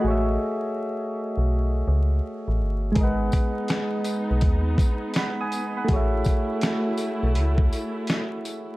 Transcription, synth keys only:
0.00 2.90 A3 medium
0.00 2.91 F#4 medium
0.00 0.25 D#5 medium
0.05 2.93 G#4 medium
0.05 2.94 C#5 medium
0.11 2.96 E5 medium
2.92 5.83 G#3 medium
2.92 5.84 G#4 medium
2.97 3.05 A#4 medium
2.97 5.87 D#5 medium
3.03 5.89 B4 medium
3.03 5.15 F#5 medium
5.17 5.39 F#5 medium
5.17 5.39 B5 medium
5.41 5.75 G#5 medium
5.41 5.75 D#6 medium
5.77 6.11 F#5 medium
5.77 6.11 B5 medium
5.84 8.75 A3 medium
5.84 8.77 F#4 medium
5.90 8.77 G#4 medium
5.90 8.77 C#5 medium
5.96 8.77 E5 medium

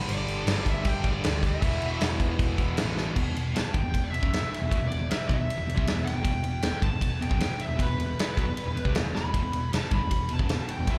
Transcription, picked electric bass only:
0.09 0.23 G1 medium
0.27 0.42 G1 medium
0.47 0.62 G1 medium
0.66 0.81 G1 loud
0.85 1.00 G1 loud
1.05 1.19 G1 medium
1.25 1.55 D2 loud
1.63 1.78 E1 medium
1.82 1.97 E1 medium
2.01 2.16 E1 medium
2.20 2.35 E1 medium
2.39 2.54 E1 loud
2.59 2.73 E1 medium
2.80 3.09 A1 medium
3.16 3.25 E1 medium
3.27 3.35 E1 medium
3.37 3.54 E1 medium
3.57 3.65 E1 medium
3.67 muted picked electric bass stroke soft
3.75 3.83 G1 medium
3.87 3.93 E1 medium
3.94 4.11 E1 medium
4.14 4.22 E1 medium
4.22 4.31 F#1 medium
4.33 4.41 E1 medium
4.43 muted picked electric bass stroke soft
4.62 4.70 E1 medium
4.72 4.80 E1 medium
4.82 4.90 E1 medium
4.93 5.00 E1 medium
5.01 5.09 E1 medium
5.13 muted picked electric bass stroke soft
5.30 5.38 B1 medium
5.41 5.48 E1 medium
5.50 muted picked electric bass stroke soft
5.60 5.67 E1 medium
5.70 5.77 E1 medium
5.78 5.86 C2 medium
5.88 5.96 E1 medium
5.97 6.05 E1 medium
6.07 6.15 E1 medium
6.16 6.24 E1 medium
6.25 6.33 E1 medium
6.33 6.43 E1 medium
6.43 6.61 E1 medium
6.62 6.72 E1 medium
6.73 muted picked electric bass stroke soft
6.83 6.91 G1 loud
6.94 7.01 E1 medium
7.02 7.20 E1 medium
7.21 7.30 E1 medium
7.31 7.39 F#1 medium
7.39 7.48 E1 medium
7.49 muted picked electric bass stroke soft
7.68 7.78 E1 medium
7.79 7.87 E1 medium
7.88 7.96 E1 medium
7.97 8.06 E1 medium
8.06 8.16 E1 medium
8.38 8.45 B1 medium
8.45 8.55 E1 medium
8.66 8.74 E1 medium
8.75 8.84 E1 medium
8.85 8.94 C2 medium
8.96 9.04 E1 medium
9.05 9.14 E1 medium
9.15 9.23 E1 medium
9.24 9.33 E1 medium
9.35 9.43 E1 medium
9.45 9.53 E1 medium
9.54 9.71 E1 medium
9.74 9.82 E1 medium
9.83 muted picked electric bass stroke soft
9.92 10.00 G1 medium
10.04 10.11 E1 medium
10.12 10.29 E1 medium
10.32 10.40 E1 medium
10.40 10.49 F#1 medium
10.50 10.58 E1 medium
10.59 muted picked electric bass stroke soft
10.79 10.87 E1 medium
10.88 10.96 E1 medium

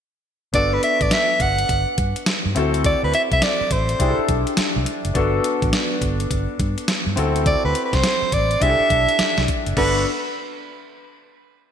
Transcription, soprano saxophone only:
0.55 0.75 D5 medium
0.73 0.83 B4 medium
0.84 1.04 E5 medium
1.02 1.14 D5 medium
1.13 1.43 E5 loud
1.42 1.99 F#5 medium
2.86 3.02 D5 loud
3.04 3.13 B4 medium
3.14 3.22 E5 medium
3.33 3.45 E5 loud
3.43 3.74 D5 loud
3.72 4.29 C5 medium
7.47 7.63 D5 medium
7.65 7.83 B4 medium
7.85 7.96 B4 medium
7.94 8.35 C5 loud
8.34 8.64 D5 medium
8.62 9.48 E5 loud
9.78 10.04 B4 medium

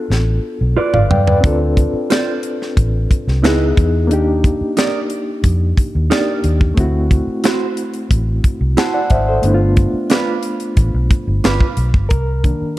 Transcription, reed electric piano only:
0.00 1.05 B3 medium
0.00 1.06 D4 medium
0.00 1.07 F4 medium
0.00 1.08 A4 medium
0.77 0.93 B4 medium
0.77 0.93 D5 medium
0.94 1.10 D5 medium
0.94 1.10 F5 medium
1.11 1.26 G5 medium
1.27 1.59 B4 medium
1.27 1.59 D5 medium
1.41 3.39 C4 medium
1.41 3.40 D4 medium
1.45 3.41 F4 medium
1.45 3.42 A4 medium
3.42 4.10 B3 medium
3.42 4.10 D#4 medium
3.42 4.11 E4 medium
3.42 4.12 G#4 medium
4.07 6.05 A#3 medium
4.07 6.06 D4 medium
4.11 6.07 D#4 medium
4.11 6.08 G4 medium
6.10 6.77 A#3 medium
6.10 6.78 D4 medium
6.10 6.78 D#4 soft
6.10 6.79 G4 medium
6.74 9.06 A3 medium
6.74 9.07 C4 medium
6.74 9.07 E4 medium
6.80 9.08 F#4 medium
8.78 8.93 F#5 medium
8.78 8.94 A5 medium
8.94 9.10 D5 medium
8.94 9.10 F#5 medium
9.11 9.27 C5 medium
9.11 9.27 E5 medium
9.28 9.60 A4 medium
9.28 9.60 C5 medium
9.42 12.06 A3 medium
9.42 12.07 B3 medium
9.42 12.08 D4 medium
9.47 9.53 E4 medium
9.54 12.12 F4 medium
12.09 12.79 A#4 medium
12.44 12.79 D#3 medium
12.44 12.79 A#3 soft
12.44 12.79 D4 medium

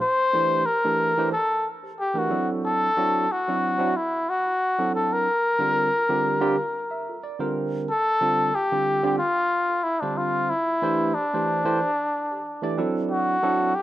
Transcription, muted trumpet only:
0.01 0.67 C5 loud
0.66 1.32 A#4 medium
1.33 1.69 A4 medium
2.00 2.20 G4 medium
2.18 2.50 F#4 medium
2.65 3.33 A4 loud
3.32 3.98 F#4 medium
3.97 4.31 E4 medium
4.29 4.94 F#4 medium
4.95 5.14 A4 medium
5.13 7.24 A#4 medium
7.90 8.57 A4 loud
8.55 9.18 G4 medium
9.18 9.85 F4 medium
9.83 10.02 E4 medium
10.00 10.19 D4 medium
10.17 10.51 F4 medium
10.50 11.16 E4 medium
11.14 12.78 D4 medium
13.11 13.77 F#4 medium
13.75 13.82 G4 medium

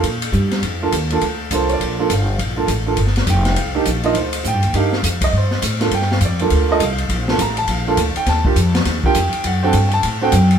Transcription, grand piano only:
0.00 0.20 F5 medium
0.82 0.92 A#3 medium
0.82 0.92 D4 medium
0.82 0.92 F4 medium
0.82 0.92 A4 medium
1.11 1.21 A#3 medium
1.11 1.21 D4 medium
1.11 1.21 F4 medium
1.11 1.22 A4 medium
1.52 1.95 A#3 medium
1.52 1.96 D4 medium
1.52 1.96 F4 medium
1.52 1.96 A4 medium
1.52 1.70 C5 medium
1.73 2.09 D5 medium
1.99 2.09 A#3 medium
1.99 2.09 D4 medium
1.99 2.09 F4 medium
1.99 2.09 A4 medium
2.13 2.56 F5 medium
2.57 2.67 A#3 medium
2.57 2.67 D4 medium
2.57 2.67 F4 medium
2.57 2.68 A4 medium
2.86 2.97 A#3 medium
2.86 2.97 D4 medium
2.86 2.97 F4 medium
2.86 2.97 A4 medium
3.30 3.56 G5 medium
3.59 4.02 F5 medium
3.75 3.85 A#3 medium
3.75 3.85 D4 medium
3.75 3.85 D#4 medium
3.75 3.85 G4 medium
4.03 4.14 A#3 medium
4.03 4.14 D4 medium
4.03 4.14 D#4 medium
4.03 4.14 F4 medium
4.03 4.16 D#5 medium
4.17 4.44 C5 medium
4.48 4.74 G5 medium
4.74 4.91 A#3 medium
4.74 4.91 D4 medium
4.74 4.91 D#4 medium
4.74 4.91 G4 medium
4.74 5.20 F5 medium
5.24 5.34 D#5 medium
5.37 5.63 C5 medium
5.80 5.91 A#3 medium
5.80 5.91 D4 medium
5.80 5.91 F4 medium
5.80 5.91 A4 medium
5.94 6.11 G5 medium
6.12 6.22 F5 medium
6.25 6.68 D5 medium
6.40 6.68 A#3 medium
6.40 6.68 D4 medium
6.40 6.68 F4 medium
6.40 6.68 A4 loud
6.69 6.79 A#3 medium
6.69 6.80 D4 medium
6.69 6.80 F4 medium
6.69 6.80 A4 medium
6.69 6.81 D#5 loud
6.84 7.27 F5 medium
7.29 7.39 A#3 medium
7.29 7.39 D4 medium
7.29 7.39 F4 medium
7.29 7.39 A4 medium
7.41 7.58 A#5 loud
7.58 7.69 A5 medium
7.71 8.14 F5 medium
7.87 7.97 A#3 medium
7.87 7.97 D4 medium
7.87 7.97 F4 medium
7.87 7.98 A4 loud
8.17 8.27 G5 medium
8.29 8.73 A5 medium
8.45 8.56 A#3 medium
8.45 8.56 D4 medium
8.45 8.56 F4 medium
8.45 8.56 G4 medium
9.05 9.15 A#3 medium
9.05 9.15 D4 medium
9.05 9.15 F4 medium
9.05 9.16 G4 loud
9.05 9.43 G5 medium
9.47 9.64 F#5 medium
9.63 9.73 C4 medium
9.63 9.73 D4 medium
9.63 9.74 F#4 medium
9.63 9.74 A4 loud
9.63 9.91 G5 medium
9.89 9.91 G#5 medium
9.94 10.04 A5 loud
10.22 10.32 C4 medium
10.22 10.32 D4 medium
10.22 10.32 F#4 medium
10.22 10.32 A4 loud
10.22 10.59 G5 loud

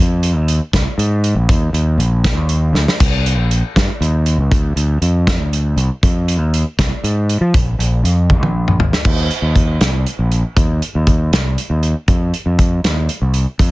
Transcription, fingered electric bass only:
0.00 0.35 F2 loud
0.35 0.59 D#2 medium
0.73 0.85 C2 medium
0.98 1.33 G#2 loud
1.35 1.48 A#1 medium
1.49 1.72 D#2 loud
1.73 1.97 D#2 medium
1.98 2.36 A#1 medium
2.36 2.72 D#2 medium
2.73 2.86 D2 medium
3.00 3.37 C2 medium
3.37 3.61 A#1 medium
3.76 3.88 G2 loud
4.01 4.36 D#2 medium
4.38 4.50 C#2 medium
4.51 4.75 D2 loud
4.76 5.00 D2 medium
5.02 5.39 F2 medium
5.39 5.74 D2 medium
5.76 5.89 C2 medium
6.03 6.39 F2 loud
6.39 6.63 D#2 medium
6.79 6.90 C2 loud
7.04 7.39 G#2 loud
7.41 7.53 F3 medium
7.54 7.77 A#1 loud
7.79 8.02 A#1 medium
8.03 8.42 F2 medium
8.42 8.77 A#1 medium
8.79 8.91 G#1 medium
9.05 9.28 D#2 loud
9.42 9.78 D#2 medium
9.81 10.04 C2 medium
10.19 10.42 A#1 medium
10.56 10.80 D#2 loud
10.95 11.30 D#2 medium
11.32 11.56 C2 medium
11.70 11.93 D#2 medium
12.08 12.31 F2 loud
12.46 12.81 F2 medium
12.84 13.07 D#2 medium
13.22 13.45 C2 medium
13.59 13.71 F2 loud

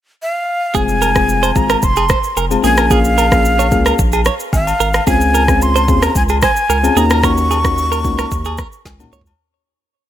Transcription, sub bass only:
0.75 1.52 F1 loud
1.56 1.76 G#1 medium
1.83 2.13 F1 loud
2.37 2.57 F1 medium
2.64 3.73 A#1 loud
3.72 3.92 C#2 medium
3.99 4.29 A#1 loud
4.53 4.73 G#1 medium
4.80 5.00 G#1 medium
5.07 5.90 C#2 loud
5.88 6.08 D#2 medium
6.16 6.46 C#2 loud
6.69 6.89 C#2 loud
6.96 8.06 D#2 loud
8.05 8.25 C#2 medium
8.32 8.62 D#2 loud
8.85 9.05 C#2 loud
9.12 9.32 C#2 medium

